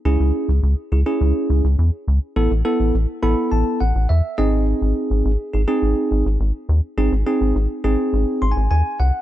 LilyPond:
<<
  \new Staff \with { instrumentName = "Tine electric piano" } { \time 4/4 \key gis \phrygian \tempo 4 = 104 << { r1 | r4. b''8 a''8 fis''8 e''8 dis''8 | r1 | r2 \tuplet 3/2 { r8. bis''16 gis''8 } gis''8 fis''8 | } \\ { <cis' e' gis'>8. r8. <e' gis'>16 <cis' e' gis'>4 r4 r16 | <b e' a'>16 r16 <b e' a'>8 r8 <b e' a'>4 r4 <bis dis' gis'>8~ | <bis dis' gis'>4 r8 <dis' gis'>16 <bis dis' gis'>4 r4 r16 | <bis dis' gis'>16 r16 <bis dis' gis'>8 r8 <bis dis' gis'>4 r4. | } >> }
  \new Staff \with { instrumentName = "Analog synth bass" } { \clef bass \time 4/4 \key gis \phrygian cis,16 cis,16 r16 cis,16 cis,16 r16 cis,16 r16 cis,16 r16 cis,16 cis,16 e,16 r16 cis,16 r16 | a,,16 a,,16 r16 a,,16 a,,16 r16 a,,16 r16 a,,16 r16 a,,16 a,,16 e,16 r16 gis,,8~ | gis,,16 gis,,16 r16 gis,,16 gis,,16 r16 gis,,16 r16 gis,,16 r16 gis,,16 gis,,16 gis,,16 r16 dis,16 r16 | gis,,16 gis,,16 r16 gis,,16 gis,,16 r16 gis,,16 r16 gis,,16 r16 gis,,16 gis,,16 dis,16 r16 bis,,16 r16 | }
>>